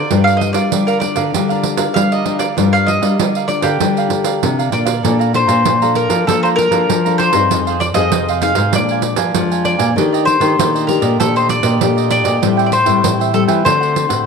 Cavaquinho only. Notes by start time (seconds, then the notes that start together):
0.12 G4 A#4 D5 F5
0.27 A#4 D5 F5
0.41 muted cavaquinho stroke
0.55 A#4 D5 F5
0.73 G4 A#4 D5 F5
0.88 A#4 D5 F5
1.02 muted cavaquinho stroke
1.16 A#4 D5 F5
1.34 G4 A#4 D5 F5
1.49 A#4 D5 F5
1.78 A#4 D5 F5
2.12 A#4 D5 F5
2.25 G4 A#4 D5 F5
2.39 A#4 D5 F5
2.57 G4 A#4 D5 F5
2.73 A#4 D5 F5
2.88 muted cavaquinho stroke
3.02 A#4 D5 F5
3.19 G4 A#4 D5 F5
3.36 A#4 D5 F5
3.50 muted cavaquinho stroke
3.63 A#4 D5 F5
3.81 G4 A#4 D5 F5
3.98 A#4 D5 F5
4.25 A#4 D5 F5
4.59 A#4 D5 F5
4.72 G4 A#4 D5 F5
4.85 A#4 D5 F5
5.03 A4 D5 F5 A#5
5.19 D5 F5 A#5
5.33 muted cavaquinho stroke
5.47 D5 F5 A#5
5.65 A4 D5 F5 A#5
5.82 D5 F5 A#5
6.09 D5 F5 A#5
6.28 A4 D5 F5 A#5
6.43 D5 F5 A#5
6.71 D5 F5 A#5
7.05 D5 F5 A#5
7.19 A4 D5 F5 A#5
7.33 D5 F5 A#5
7.52 D#4 G#4 C5 F5
7.67 G#4 C5 F5
7.81 muted cavaquinho stroke
7.94 G#4 C5 F5
8.12 D#4 G#4 C5 F5
8.29 G#4 C5 F5
8.56 G#4 C5 F5
8.74 A#4 F5 G#5
8.91 A#4 F5 G#5
9.04 muted cavaquinho stroke
9.17 A#4 F5 G#5
9.51 A#4 F5 G#5
9.64 D4 A#4 F5 G#5
9.79 A#4 F5 G#5
9.96 D4 G4 D5 D#5
10.13 G4 D5 D#5
10.40 G4 D5 D#5
10.57 D4 G4 D5 D#5
10.74 G4 D5 D#5
11.02 G4 D5 D#5
11.20 D4 G4 D5 D#5
11.36 G4 D5 D#5
11.63 G4 D5 D#5
11.96 G4 D5 D#5
12.10 D4 G4 D5 D#5
12.24 G4 D5 D#5
12.42 A4 C5 E5 G5
12.57 C5 E5 G5
12.71 muted cavaquinho stroke
12.84 C5 E5 G5
13.02 A4 C5 E5 G5
13.20 C5 E5 G5
13.47 C5 E5 G5
13.66 A4 C5 F#5
13.80 A4 C5 F#5
13.95 muted cavaquinho stroke
14.09 A4 C5 F#5